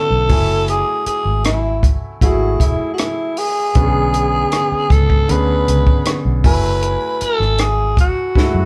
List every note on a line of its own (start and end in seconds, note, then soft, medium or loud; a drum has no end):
0.00 0.24 D3 medium
0.00 0.25 B3 medium
0.00 0.25 C#4 medium
0.00 0.25 E4 medium
0.00 0.69 A4 medium
0.10 0.28 B1 medium
0.29 0.81 F#1 medium
0.29 1.52 F#3 medium
0.29 1.53 A3 medium
0.29 1.53 E4 medium
0.29 1.53 G#5 medium
0.29 kick medium
0.29 open hi-hat medium
0.68 1.05 G#4 medium
0.68 closed hi-hat medium
1.06 1.43 G#4 medium
1.06 muted fingered electric bass stroke soft
1.06 closed hi-hat medium
1.25 1.94 G#1 medium
1.45 1.92 E4 medium
1.45 cross-stick medium
1.45 closed hi-hat medium
1.83 kick medium
1.83 closed hi-hat medium
2.21 2.56 G#1 medium
2.21 3.32 F#3 medium
2.21 3.32 A3 medium
2.21 3.33 E4 medium
2.21 2.62 F#4 medium
2.21 3.33 G#4 medium
2.21 kick medium
2.21 closed hi-hat medium
2.60 2.77 E1 medium
2.60 2.92 E4 medium
2.60 kick medium
2.60 closed hi-hat medium
2.94 3.01 F#4 medium
2.98 3.40 E4 medium
2.98 cross-stick medium
2.98 closed hi-hat medium
3.37 4.93 G#4 loud
3.37 open hi-hat medium
3.75 4.44 B1 medium
3.75 4.85 D3 medium
3.75 4.86 B3 medium
3.75 4.86 C#4 medium
3.75 3.83 F#4 medium
3.75 kick loud
3.75 closed hi-hat medium
3.83 4.90 G#4 medium
4.14 closed hi-hat medium
4.52 cross-stick medium
4.52 closed hi-hat medium
4.72 muted fingered electric bass stroke soft
4.90 5.25 C#2 medium
4.90 5.32 A4 medium
4.90 kick medium
4.90 closed hi-hat medium
5.10 kick medium
5.28 5.64 D2 medium
5.28 6.39 D3 medium
5.28 6.39 B3 medium
5.28 6.39 C#4 medium
5.28 6.40 G#4 medium
5.28 6.18 B4 medium
5.28 closed hi-hat medium
5.68 5.85 C#2 medium
5.68 closed hi-hat medium
5.87 kick medium
6.06 cross-stick loud
6.06 closed hi-hat medium
6.25 6.42 B1 medium
6.44 6.95 F#1 medium
6.44 7.67 F#3 medium
6.44 7.67 A3 medium
6.44 7.67 E4 medium
6.44 7.24 B4 loud
6.44 7.68 G#5 medium
6.44 kick loud
6.44 open hi-hat medium
6.83 closed hi-hat medium
7.21 7.62 A4 medium
7.21 muted fingered electric bass stroke soft
7.21 closed hi-hat medium
7.40 8.09 G#1 medium
7.40 cross-stick soft
7.58 7.98 G#4 medium
7.58 cross-stick medium
7.58 closed hi-hat medium
7.97 8.65 F#4 medium
7.97 kick medium
7.97 closed hi-hat medium
8.35 8.65 F#3 medium
8.35 8.42 G#3 soft
8.35 8.65 E4 medium
8.35 8.65 F#4 medium
8.35 kick medium
8.35 snare soft
8.42 8.65 A3 medium
8.55 8.65 F#2 medium